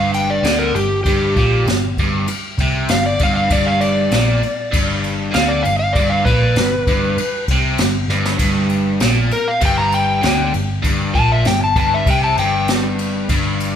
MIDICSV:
0, 0, Header, 1, 7, 480
1, 0, Start_track
1, 0, Tempo, 611621
1, 833, Time_signature, 4, 2, 24, 8
1, 10796, End_track
2, 0, Start_track
2, 0, Title_t, "Electric slide guitar"
2, 0, Program_c, 0, 29
2, 0, Note_on_c, 0, 77, 100
2, 97, Note_off_c, 0, 77, 0
2, 113, Note_on_c, 0, 79, 79
2, 229, Note_off_c, 0, 79, 0
2, 238, Note_on_c, 0, 74, 78
2, 461, Note_on_c, 0, 70, 78
2, 468, Note_off_c, 0, 74, 0
2, 583, Note_off_c, 0, 70, 0
2, 584, Note_on_c, 0, 67, 77
2, 804, Note_off_c, 0, 67, 0
2, 813, Note_on_c, 0, 67, 94
2, 1289, Note_off_c, 0, 67, 0
2, 2278, Note_on_c, 0, 77, 85
2, 2392, Note_off_c, 0, 77, 0
2, 2401, Note_on_c, 0, 74, 79
2, 2514, Note_off_c, 0, 74, 0
2, 2539, Note_on_c, 0, 77, 78
2, 2628, Note_off_c, 0, 77, 0
2, 2638, Note_on_c, 0, 77, 96
2, 2752, Note_off_c, 0, 77, 0
2, 2765, Note_on_c, 0, 74, 89
2, 2876, Note_off_c, 0, 74, 0
2, 2876, Note_on_c, 0, 77, 72
2, 2987, Note_on_c, 0, 74, 76
2, 2991, Note_off_c, 0, 77, 0
2, 3920, Note_off_c, 0, 74, 0
2, 4192, Note_on_c, 0, 77, 91
2, 4302, Note_on_c, 0, 74, 81
2, 4308, Note_off_c, 0, 77, 0
2, 4416, Note_on_c, 0, 77, 84
2, 4423, Note_off_c, 0, 74, 0
2, 4537, Note_off_c, 0, 77, 0
2, 4546, Note_on_c, 0, 77, 87
2, 4653, Note_on_c, 0, 74, 84
2, 4665, Note_off_c, 0, 77, 0
2, 4778, Note_off_c, 0, 74, 0
2, 4785, Note_on_c, 0, 77, 75
2, 4904, Note_off_c, 0, 77, 0
2, 4904, Note_on_c, 0, 71, 100
2, 5837, Note_off_c, 0, 71, 0
2, 7319, Note_on_c, 0, 70, 100
2, 7431, Note_off_c, 0, 70, 0
2, 7438, Note_on_c, 0, 77, 85
2, 7550, Note_off_c, 0, 77, 0
2, 7576, Note_on_c, 0, 79, 99
2, 7672, Note_on_c, 0, 82, 88
2, 7680, Note_off_c, 0, 79, 0
2, 7787, Note_off_c, 0, 82, 0
2, 7802, Note_on_c, 0, 79, 100
2, 8262, Note_off_c, 0, 79, 0
2, 8752, Note_on_c, 0, 81, 99
2, 8868, Note_off_c, 0, 81, 0
2, 8884, Note_on_c, 0, 76, 89
2, 8994, Note_off_c, 0, 76, 0
2, 9002, Note_on_c, 0, 79, 94
2, 9114, Note_off_c, 0, 79, 0
2, 9133, Note_on_c, 0, 81, 82
2, 9239, Note_off_c, 0, 81, 0
2, 9258, Note_on_c, 0, 81, 108
2, 9362, Note_off_c, 0, 81, 0
2, 9372, Note_on_c, 0, 76, 92
2, 9479, Note_off_c, 0, 76, 0
2, 9500, Note_on_c, 0, 79, 90
2, 9603, Note_off_c, 0, 79, 0
2, 9606, Note_on_c, 0, 81, 91
2, 9716, Note_off_c, 0, 81, 0
2, 9725, Note_on_c, 0, 79, 100
2, 9953, Note_off_c, 0, 79, 0
2, 10796, End_track
3, 0, Start_track
3, 0, Title_t, "Overdriven electric guitar"
3, 0, Program_c, 1, 29
3, 0, Note_on_c, 1, 43, 97
3, 342, Note_on_c, 1, 50, 94
3, 344, Note_off_c, 1, 43, 0
3, 580, Note_off_c, 1, 50, 0
3, 590, Note_on_c, 1, 43, 64
3, 784, Note_off_c, 1, 43, 0
3, 831, Note_on_c, 1, 43, 101
3, 1065, Note_off_c, 1, 43, 0
3, 1072, Note_on_c, 1, 46, 104
3, 1306, Note_off_c, 1, 46, 0
3, 1320, Note_on_c, 1, 43, 62
3, 1509, Note_off_c, 1, 43, 0
3, 1564, Note_on_c, 1, 43, 92
3, 1783, Note_off_c, 1, 43, 0
3, 2044, Note_on_c, 1, 48, 87
3, 2272, Note_off_c, 1, 48, 0
3, 2279, Note_on_c, 1, 43, 64
3, 2468, Note_off_c, 1, 43, 0
3, 2518, Note_on_c, 1, 43, 97
3, 2738, Note_off_c, 1, 43, 0
3, 2748, Note_on_c, 1, 43, 102
3, 3223, Note_off_c, 1, 43, 0
3, 3231, Note_on_c, 1, 46, 98
3, 3464, Note_off_c, 1, 46, 0
3, 3705, Note_on_c, 1, 43, 101
3, 4172, Note_on_c, 1, 50, 96
3, 4181, Note_off_c, 1, 43, 0
3, 4414, Note_off_c, 1, 50, 0
3, 4429, Note_on_c, 1, 43, 69
3, 4622, Note_off_c, 1, 43, 0
3, 4680, Note_on_c, 1, 43, 105
3, 4908, Note_off_c, 1, 43, 0
3, 4919, Note_on_c, 1, 46, 98
3, 5147, Note_off_c, 1, 46, 0
3, 5157, Note_on_c, 1, 43, 72
3, 5346, Note_off_c, 1, 43, 0
3, 5397, Note_on_c, 1, 43, 87
3, 5626, Note_off_c, 1, 43, 0
3, 5893, Note_on_c, 1, 48, 90
3, 6114, Note_off_c, 1, 48, 0
3, 6126, Note_on_c, 1, 43, 66
3, 6310, Note_off_c, 1, 43, 0
3, 6358, Note_on_c, 1, 43, 89
3, 6574, Note_off_c, 1, 43, 0
3, 6583, Note_on_c, 1, 43, 93
3, 7059, Note_off_c, 1, 43, 0
3, 7068, Note_on_c, 1, 46, 84
3, 7302, Note_off_c, 1, 46, 0
3, 7544, Note_on_c, 1, 43, 93
3, 8018, Note_on_c, 1, 50, 85
3, 8020, Note_off_c, 1, 43, 0
3, 8257, Note_off_c, 1, 50, 0
3, 8266, Note_on_c, 1, 43, 70
3, 8461, Note_off_c, 1, 43, 0
3, 8495, Note_on_c, 1, 43, 95
3, 8736, Note_off_c, 1, 43, 0
3, 8739, Note_on_c, 1, 46, 97
3, 8979, Note_off_c, 1, 46, 0
3, 8992, Note_on_c, 1, 43, 69
3, 9184, Note_off_c, 1, 43, 0
3, 9229, Note_on_c, 1, 43, 85
3, 9464, Note_off_c, 1, 43, 0
3, 9474, Note_on_c, 1, 48, 98
3, 9706, Note_off_c, 1, 48, 0
3, 9722, Note_on_c, 1, 43, 96
3, 10427, Note_off_c, 1, 43, 0
3, 10437, Note_on_c, 1, 43, 102
3, 10796, Note_off_c, 1, 43, 0
3, 10796, End_track
4, 0, Start_track
4, 0, Title_t, "Picked electric bass"
4, 0, Program_c, 2, 34
4, 0, Note_on_c, 2, 31, 86
4, 317, Note_off_c, 2, 31, 0
4, 335, Note_on_c, 2, 38, 89
4, 567, Note_off_c, 2, 38, 0
4, 577, Note_on_c, 2, 31, 82
4, 808, Note_off_c, 2, 31, 0
4, 825, Note_on_c, 2, 31, 88
4, 1052, Note_off_c, 2, 31, 0
4, 1066, Note_on_c, 2, 34, 76
4, 1293, Note_off_c, 2, 34, 0
4, 1298, Note_on_c, 2, 31, 67
4, 1528, Note_off_c, 2, 31, 0
4, 1548, Note_on_c, 2, 31, 82
4, 1774, Note_off_c, 2, 31, 0
4, 2023, Note_on_c, 2, 36, 77
4, 2251, Note_off_c, 2, 36, 0
4, 2270, Note_on_c, 2, 31, 79
4, 2495, Note_off_c, 2, 31, 0
4, 2507, Note_on_c, 2, 31, 91
4, 2733, Note_off_c, 2, 31, 0
4, 2754, Note_on_c, 2, 31, 86
4, 3202, Note_off_c, 2, 31, 0
4, 3226, Note_on_c, 2, 34, 84
4, 3452, Note_off_c, 2, 34, 0
4, 3711, Note_on_c, 2, 31, 84
4, 4160, Note_off_c, 2, 31, 0
4, 4200, Note_on_c, 2, 38, 94
4, 4419, Note_off_c, 2, 38, 0
4, 4440, Note_on_c, 2, 31, 73
4, 4659, Note_off_c, 2, 31, 0
4, 4676, Note_on_c, 2, 31, 86
4, 4896, Note_off_c, 2, 31, 0
4, 4906, Note_on_c, 2, 34, 76
4, 5131, Note_off_c, 2, 34, 0
4, 5141, Note_on_c, 2, 31, 67
4, 5368, Note_off_c, 2, 31, 0
4, 5394, Note_on_c, 2, 31, 75
4, 5615, Note_off_c, 2, 31, 0
4, 5872, Note_on_c, 2, 36, 87
4, 6094, Note_off_c, 2, 36, 0
4, 6111, Note_on_c, 2, 31, 80
4, 6333, Note_off_c, 2, 31, 0
4, 6343, Note_on_c, 2, 31, 94
4, 6569, Note_off_c, 2, 31, 0
4, 6588, Note_on_c, 2, 31, 85
4, 7038, Note_off_c, 2, 31, 0
4, 7070, Note_on_c, 2, 34, 72
4, 7293, Note_off_c, 2, 34, 0
4, 7546, Note_on_c, 2, 31, 94
4, 7997, Note_off_c, 2, 31, 0
4, 8036, Note_on_c, 2, 38, 96
4, 8257, Note_off_c, 2, 38, 0
4, 8276, Note_on_c, 2, 31, 86
4, 8497, Note_off_c, 2, 31, 0
4, 8506, Note_on_c, 2, 31, 88
4, 8732, Note_off_c, 2, 31, 0
4, 8747, Note_on_c, 2, 34, 94
4, 8973, Note_off_c, 2, 34, 0
4, 8994, Note_on_c, 2, 31, 70
4, 9217, Note_off_c, 2, 31, 0
4, 9228, Note_on_c, 2, 31, 85
4, 9454, Note_off_c, 2, 31, 0
4, 9470, Note_on_c, 2, 36, 92
4, 9695, Note_off_c, 2, 36, 0
4, 9709, Note_on_c, 2, 31, 89
4, 10401, Note_off_c, 2, 31, 0
4, 10429, Note_on_c, 2, 31, 82
4, 10796, Note_off_c, 2, 31, 0
4, 10796, End_track
5, 0, Start_track
5, 0, Title_t, "Muted overdriven electric guitar strokes"
5, 1793, Note_on_c, 9, 29, 56
5, 1871, Note_off_c, 9, 29, 0
5, 3474, Note_on_c, 9, 29, 49
5, 3552, Note_off_c, 9, 29, 0
5, 5647, Note_on_c, 9, 29, 59
5, 5725, Note_off_c, 9, 29, 0
5, 7302, Note_on_c, 9, 29, 46
5, 7381, Note_off_c, 9, 29, 0
5, 10796, End_track
6, 0, Start_track
6, 0, Title_t, "Muted picked electric bass strokes"
6, 1796, Note_on_c, 9, 29, 42
6, 1875, Note_off_c, 9, 29, 0
6, 3469, Note_on_c, 9, 29, 35
6, 3548, Note_off_c, 9, 29, 0
6, 5629, Note_on_c, 9, 29, 38
6, 5707, Note_off_c, 9, 29, 0
6, 7306, Note_on_c, 9, 29, 36
6, 7385, Note_off_c, 9, 29, 0
6, 10796, End_track
7, 0, Start_track
7, 0, Title_t, "Drums"
7, 108, Note_on_c, 9, 51, 57
7, 186, Note_off_c, 9, 51, 0
7, 348, Note_on_c, 9, 51, 83
7, 357, Note_on_c, 9, 38, 104
7, 426, Note_off_c, 9, 51, 0
7, 435, Note_off_c, 9, 38, 0
7, 592, Note_on_c, 9, 51, 62
7, 670, Note_off_c, 9, 51, 0
7, 828, Note_on_c, 9, 51, 83
7, 829, Note_on_c, 9, 36, 95
7, 906, Note_off_c, 9, 51, 0
7, 908, Note_off_c, 9, 36, 0
7, 1070, Note_on_c, 9, 36, 97
7, 1070, Note_on_c, 9, 51, 61
7, 1148, Note_off_c, 9, 36, 0
7, 1149, Note_off_c, 9, 51, 0
7, 1312, Note_on_c, 9, 51, 71
7, 1321, Note_on_c, 9, 38, 94
7, 1390, Note_off_c, 9, 51, 0
7, 1399, Note_off_c, 9, 38, 0
7, 1551, Note_on_c, 9, 36, 83
7, 1552, Note_on_c, 9, 51, 62
7, 1629, Note_off_c, 9, 36, 0
7, 1630, Note_off_c, 9, 51, 0
7, 1785, Note_on_c, 9, 51, 84
7, 1863, Note_off_c, 9, 51, 0
7, 2028, Note_on_c, 9, 51, 69
7, 2029, Note_on_c, 9, 36, 100
7, 2106, Note_off_c, 9, 51, 0
7, 2107, Note_off_c, 9, 36, 0
7, 2265, Note_on_c, 9, 51, 94
7, 2273, Note_on_c, 9, 38, 110
7, 2343, Note_off_c, 9, 51, 0
7, 2352, Note_off_c, 9, 38, 0
7, 2506, Note_on_c, 9, 51, 71
7, 2511, Note_on_c, 9, 36, 103
7, 2584, Note_off_c, 9, 51, 0
7, 2589, Note_off_c, 9, 36, 0
7, 2750, Note_on_c, 9, 51, 89
7, 2751, Note_on_c, 9, 36, 102
7, 2828, Note_off_c, 9, 51, 0
7, 2830, Note_off_c, 9, 36, 0
7, 2990, Note_on_c, 9, 51, 64
7, 3068, Note_off_c, 9, 51, 0
7, 3228, Note_on_c, 9, 51, 87
7, 3237, Note_on_c, 9, 38, 90
7, 3307, Note_off_c, 9, 51, 0
7, 3316, Note_off_c, 9, 38, 0
7, 3475, Note_on_c, 9, 51, 58
7, 3553, Note_off_c, 9, 51, 0
7, 3713, Note_on_c, 9, 51, 94
7, 3714, Note_on_c, 9, 36, 103
7, 3792, Note_off_c, 9, 36, 0
7, 3792, Note_off_c, 9, 51, 0
7, 3953, Note_on_c, 9, 51, 54
7, 4032, Note_off_c, 9, 51, 0
7, 4188, Note_on_c, 9, 51, 80
7, 4196, Note_on_c, 9, 38, 106
7, 4266, Note_off_c, 9, 51, 0
7, 4275, Note_off_c, 9, 38, 0
7, 4434, Note_on_c, 9, 51, 60
7, 4512, Note_off_c, 9, 51, 0
7, 4672, Note_on_c, 9, 51, 85
7, 4673, Note_on_c, 9, 36, 93
7, 4750, Note_off_c, 9, 51, 0
7, 4752, Note_off_c, 9, 36, 0
7, 4912, Note_on_c, 9, 36, 105
7, 4914, Note_on_c, 9, 51, 53
7, 4990, Note_off_c, 9, 36, 0
7, 4993, Note_off_c, 9, 51, 0
7, 5148, Note_on_c, 9, 51, 81
7, 5156, Note_on_c, 9, 38, 102
7, 5226, Note_off_c, 9, 51, 0
7, 5235, Note_off_c, 9, 38, 0
7, 5392, Note_on_c, 9, 36, 94
7, 5392, Note_on_c, 9, 51, 64
7, 5471, Note_off_c, 9, 36, 0
7, 5471, Note_off_c, 9, 51, 0
7, 5634, Note_on_c, 9, 51, 92
7, 5712, Note_off_c, 9, 51, 0
7, 5871, Note_on_c, 9, 51, 64
7, 5872, Note_on_c, 9, 36, 88
7, 5949, Note_off_c, 9, 51, 0
7, 5950, Note_off_c, 9, 36, 0
7, 6106, Note_on_c, 9, 51, 84
7, 6114, Note_on_c, 9, 38, 106
7, 6184, Note_off_c, 9, 51, 0
7, 6193, Note_off_c, 9, 38, 0
7, 6357, Note_on_c, 9, 38, 58
7, 6436, Note_off_c, 9, 38, 0
7, 6478, Note_on_c, 9, 38, 85
7, 6556, Note_off_c, 9, 38, 0
7, 6584, Note_on_c, 9, 49, 76
7, 6584, Note_on_c, 9, 51, 83
7, 6587, Note_on_c, 9, 36, 82
7, 6663, Note_off_c, 9, 49, 0
7, 6663, Note_off_c, 9, 51, 0
7, 6666, Note_off_c, 9, 36, 0
7, 6822, Note_on_c, 9, 51, 67
7, 6901, Note_off_c, 9, 51, 0
7, 7063, Note_on_c, 9, 51, 81
7, 7072, Note_on_c, 9, 38, 96
7, 7142, Note_off_c, 9, 51, 0
7, 7150, Note_off_c, 9, 38, 0
7, 7307, Note_on_c, 9, 51, 55
7, 7386, Note_off_c, 9, 51, 0
7, 7543, Note_on_c, 9, 51, 90
7, 7548, Note_on_c, 9, 36, 106
7, 7622, Note_off_c, 9, 51, 0
7, 7626, Note_off_c, 9, 36, 0
7, 7785, Note_on_c, 9, 51, 63
7, 7863, Note_off_c, 9, 51, 0
7, 8028, Note_on_c, 9, 51, 83
7, 8037, Note_on_c, 9, 38, 116
7, 8106, Note_off_c, 9, 51, 0
7, 8115, Note_off_c, 9, 38, 0
7, 8270, Note_on_c, 9, 51, 67
7, 8348, Note_off_c, 9, 51, 0
7, 8507, Note_on_c, 9, 36, 89
7, 8508, Note_on_c, 9, 51, 82
7, 8585, Note_off_c, 9, 36, 0
7, 8586, Note_off_c, 9, 51, 0
7, 8749, Note_on_c, 9, 36, 98
7, 8749, Note_on_c, 9, 51, 54
7, 8827, Note_off_c, 9, 36, 0
7, 8828, Note_off_c, 9, 51, 0
7, 8984, Note_on_c, 9, 51, 74
7, 8993, Note_on_c, 9, 38, 95
7, 9063, Note_off_c, 9, 51, 0
7, 9072, Note_off_c, 9, 38, 0
7, 9228, Note_on_c, 9, 36, 92
7, 9230, Note_on_c, 9, 51, 59
7, 9306, Note_off_c, 9, 36, 0
7, 9308, Note_off_c, 9, 51, 0
7, 9468, Note_on_c, 9, 36, 112
7, 9470, Note_on_c, 9, 51, 94
7, 9546, Note_off_c, 9, 36, 0
7, 9548, Note_off_c, 9, 51, 0
7, 9711, Note_on_c, 9, 51, 64
7, 9790, Note_off_c, 9, 51, 0
7, 9950, Note_on_c, 9, 51, 92
7, 9958, Note_on_c, 9, 38, 108
7, 10028, Note_off_c, 9, 51, 0
7, 10037, Note_off_c, 9, 38, 0
7, 10192, Note_on_c, 9, 51, 66
7, 10271, Note_off_c, 9, 51, 0
7, 10430, Note_on_c, 9, 51, 83
7, 10431, Note_on_c, 9, 36, 93
7, 10508, Note_off_c, 9, 51, 0
7, 10510, Note_off_c, 9, 36, 0
7, 10675, Note_on_c, 9, 51, 63
7, 10753, Note_off_c, 9, 51, 0
7, 10796, End_track
0, 0, End_of_file